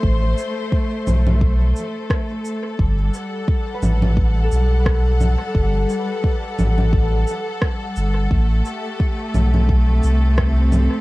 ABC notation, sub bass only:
X:1
M:4/4
L:1/8
Q:"Swing 16ths" 1/4=87
K:Ador
V:1 name="Sub bass" clef=bass
A,,, z2 B,,,2 z3 | G,,, z2 A,,,2 B,,,2 z | G,,, z2 A,,,2 z2 G,,, | A,,, z2 B,,,2 C,,2 z |]